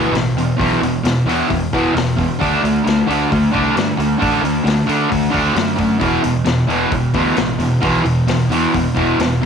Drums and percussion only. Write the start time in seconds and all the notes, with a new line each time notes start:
0.15 snare, open hi-hat
0.38 open hi-hat
0.60 kick, open hi-hat
0.83 open hi-hat
1.05 snare, open hi-hat
1.29 open hi-hat
1.50 kick, open hi-hat
1.73 kick, open hi-hat
1.97 snare, open hi-hat
2.19 kick, open hi-hat
2.41 kick, open hi-hat
2.65 open hi-hat
2.87 snare, open hi-hat
3.10 open hi-hat
3.32 kick, open hi-hat
3.55 kick, open hi-hat
3.77 snare, open hi-hat
4.00 open hi-hat
4.22 kick, open hi-hat
4.45 open hi-hat
4.67 snare, open hi-hat
4.89 open hi-hat
5.12 kick, open hi-hat
5.34 kick, open hi-hat
5.56 snare, open hi-hat
5.78 kick, open hi-hat
6.01 kick, open hi-hat
6.24 open hi-hat
6.46 snare, open hi-hat
6.70 open hi-hat
6.92 kick, open hi-hat
7.14 kick, open hi-hat
7.37 snare, open hi-hat
7.60 open hi-hat
7.82 kick, open hi-hat
8.05 open hi-hat
8.28 snare, open hi-hat
8.52 open hi-hat
8.74 kick, open hi-hat
8.96 kick, open hi-hat
9.20 snare, open hi-hat